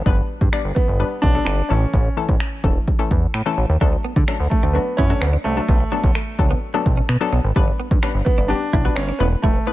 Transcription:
0.06 G1 G3 B3 D4 B4, kick
0.41 G2, kick
0.53 G3 B3 D4 D5, finger snap
0.65 G1
0.75 B3, kick
0.88 G1
1.00 G3 B3 D4 B4
1.22 B1 D4, kick
1.35 G3 B3 D4 A4
1.45 G1 D4, finger snap
1.69 A1 E3 A3 C#4 A4
1.94 A1, kick
2.17 E3 A3 C#4 A4
2.29 A1, kick
2.40 finger snap
2.64 E1 E3 A3 C#4 A4, kick
2.88 kick
2.99 E3 A3 C#4 A4
3.11 E2, kick
3.34 A2, finger snap
3.46 E3 A3 C#4 A4
3.58 A1
3.69 D#2
3.81 D2 F#3 A3 D4 A4, kick
3.93 muted clean electric guitar stroke
4.04 B3
4.16 D3, kick
4.28 F#3 A3 C#4 D4 A4, finger snap
4.40 D2
4.50 A3, muted clean electric guitar stroke, kick
4.63 D2 D4
4.73 F#3 A3 B3 D4 F#4, muted clean electric guitar stroke
4.97 F#2 C#4 E4, kick
5.10 F#3 A3 D4 F#4 A4
5.20 D2 B3, finger snap, muted clean electric guitar stroke
5.33 D4
5.44 C2 A3 C#4
5.57 F#3 A3 D4 A4
5.68 B1 B3, kick
5.80 muted clean electric guitar stroke
5.92 F#3 B3 D4 A4
6.04 B1, kick
6.15 A3, finger snap
6.39 C#2 F#3 B3 D4 A4, muted clean electric guitar stroke, kick
6.51 B3
6.74 F#3 A3 B3 D4 A4
6.86 B1, muted clean electric guitar stroke, kick
6.97 C#4
7.09 B2, finger snap
7.21 F#3 B3 D4 A4
7.32 B1 B3
7.44 G#1
7.56 G1 G3 B3 D4 B4, kick
7.68 muted clean electric guitar stroke
7.80 B3
7.91 G2, kick
8.03 G3 B3 C#4 D4 B4, finger snap
8.15 G1
8.25 B3, muted clean electric guitar stroke, kick
8.38 G1 D4
8.48 G3 B3 D4 G4, muted clean electric guitar stroke
8.73 B1 E4, kick
8.85 G3 B3 D4 F#4 B4
8.96 G1 C#4, finger snap
9.09 D4
9.19 E1 A3 B3 C#4 E4 B4
9.42 E1 A3 E4, kick
9.55 muted clean electric guitar stroke
9.67 A3 B3 E4 B4

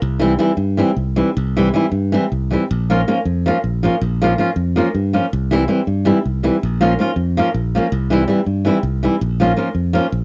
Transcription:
0.02 C2
0.19 E3 G3 C4 E4
0.39 E3 G3 C4 E4
0.57 G2
0.77 E3 G3 C4 E4
0.96 C2
1.16 E3 G3 C4 E4
1.37 C2
1.57 E3 G3 C4 E4
1.74 E3 G3 C4 E4
1.92 G2
2.12 E3 G3 C4 E4
2.32 C2
2.51 E3 G3 C4 E4
2.71 A#1
2.90 F3 A#3 C#4 F4
3.08 F3 A#3 C#4 F4
3.25 F2
3.46 F3 A#3 C#4 F4
3.64 A#1
3.83 F3 A#3 C#4 F4
4.01 A#1
4.22 F3 A#3 C#4 F4
4.38 F3 A#3 C#4 F4
4.56 F2
4.76 F3 A#3 C#4 F4
4.95 G2
5.13 F3 A#3 C#4 F4
5.33 C2
5.51 E3 G3 C4 E4
5.68 E3 G3 C4 E4
5.87 G2
6.05 E3 G3 C4 E4
6.25 C2
6.43 E3 G3 C4 E4
6.63 A#1
6.81 F3 A#3 C#4 F4
6.99 F3 A#3 C#4 F4
7.16 F2
7.37 F3 A#3 C#4 F4
7.54 A#1
7.75 F3 A#3 C#4 F4
7.92 C2
8.10 E3 G3 C4 E4
8.28 E3 G3 C4 E4
8.46 G2
8.65 E3 G3 C4 E4
8.83 C2
9.03 E3 G3 C4 E4
9.21 A#1
9.40 F3 A#3 C#4 F4
9.56 F3 A#3 C#4 F4
9.75 F2
9.93 F3 A#3 C#4 F4
10.12 A#1

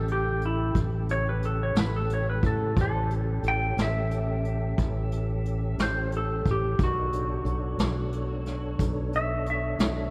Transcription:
Already playing: A1 C#3 G4 A4
0.08 closed hi-hat
0.12 G4
0.41 closed hi-hat
0.46 E4
0.75 A1, kick, closed hi-hat
1.09 C#5, closed hi-hat
1.29 B4
1.42 A4, closed hi-hat
1.63 C#5
1.75 A1, snare, closed hi-hat
1.79 B4
1.96 A4
2.10 closed hi-hat
2.14 C#5
2.30 B4
2.43 A2 A4, kick, closed hi-hat
2.76 A1 C5 D5 G#5, kick, closed hi-hat
2.81 A4
3.10 C#4 G4 A4, closed hi-hat
3.43 A1, closed hi-hat
3.48 G5
3.77 A1, snare, closed hi-hat
3.82 E5
4.11 closed hi-hat
4.45 closed hi-hat
4.78 A1, kick, closed hi-hat
5.12 closed hi-hat
5.45 closed hi-hat
5.78 A1, snare, closed hi-hat
5.82 C5
6.12 closed hi-hat
6.17 A4
6.45 A1, kick, closed hi-hat
6.51 G4
6.77 B1 D#4 A#4 D5, kick, closed hi-hat
6.84 F#4
7.12 D4 A4 C#5, closed hi-hat
7.45 B1, closed hi-hat
7.78 B1, snare, closed hi-hat
8.12 closed hi-hat
8.46 snare, closed hi-hat
8.79 B1, kick, closed hi-hat
9.13 E5, closed hi-hat
9.46 closed hi-hat
9.50 E5
9.79 B1, snare, closed hi-hat

